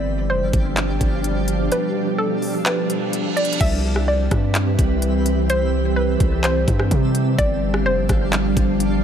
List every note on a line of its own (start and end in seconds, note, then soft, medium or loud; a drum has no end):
0.00 0.31 G1 loud
0.00 3.57 B2 medium
0.00 3.57 F3 medium
0.00 3.57 G3 medium
0.00 3.57 D4 medium
0.00 1.70 G4 medium
0.00 3.57 G4 medium
0.00 0.27 D5 loud
0.00 3.57 F5 medium
0.30 0.43 F1 loud
0.30 1.68 C5 medium
0.42 0.53 G1 loud
0.53 0.99 G1 loud
0.53 kick loud
0.53 closed hi-hat medium
0.77 clap loud
0.77 closed hi-hat medium
1.01 1.69 G1 medium
1.01 kick medium
1.01 closed hi-hat medium
1.24 closed hi-hat medium
1.48 closed hi-hat medium
1.72 3.59 A4 medium
1.72 2.16 B4 medium
1.72 closed hi-hat medium
2.18 2.63 A4 medium
2.42 open hi-hat soft
2.66 3.33 B4 medium
2.66 clap loud
2.66 closed hi-hat medium
2.66 reverse cymbal medium
2.90 closed hi-hat medium
3.13 closed hi-hat medium
3.37 3.59 D5 medium
3.37 closed hi-hat soft
3.45 closed hi-hat medium
3.53 closed hi-hat medium
3.60 4.29 C2 loud
3.60 7.35 E3 medium
3.60 9.04 G3 medium
3.60 7.35 C4 medium
3.60 7.35 G4 loud
3.60 5.48 B4 medium
3.60 7.35 E5 medium
3.60 4.05 E5 loud
3.60 kick loud
3.60 closed hi-hat medium
3.60 crash loud
3.96 cross-stick medium
4.08 5.46 D5 medium
4.31 4.77 G2 loud
4.31 kick loud
4.31 cross-stick loud
4.31 closed hi-hat medium
4.55 clap loud
4.55 closed hi-hat medium
4.79 6.16 C2 loud
4.79 kick medium
4.79 closed hi-hat medium
5.02 closed hi-hat medium
5.26 closed hi-hat medium
5.50 7.37 A4 medium
5.50 5.94 C5 loud
5.50 closed hi-hat medium
5.96 6.41 B4 medium
6.20 6.66 C2 loud
6.20 kick loud
6.20 closed hi-hat medium
6.44 6.89 C5 loud
6.44 clap loud
6.44 closed hi-hat medium
6.68 6.90 G2 loud
6.68 kick medium
6.68 closed hi-hat medium
6.79 cross-stick loud
6.91 7.37 C3 loud
6.91 kick loud
6.91 closed hi-hat medium
7.15 closed hi-hat medium
7.38 7.87 G1 loud
7.38 9.04 F3 medium
7.38 9.04 D4 medium
7.38 9.04 G4 medium
7.38 9.04 G4 loud
7.38 7.83 D5 loud
7.38 9.04 F5 medium
7.38 kick loud
7.38 closed hi-hat medium
7.74 cross-stick loud
7.86 7.99 F1 loud
7.86 9.04 C5 loud
7.98 8.09 G1 loud
8.09 8.55 G1 loud
8.09 kick loud
8.09 cross-stick medium
8.09 closed hi-hat medium
8.33 clap loud
8.33 closed hi-hat medium
8.57 9.04 G1 loud
8.57 kick loud
8.57 closed hi-hat medium
8.80 closed hi-hat medium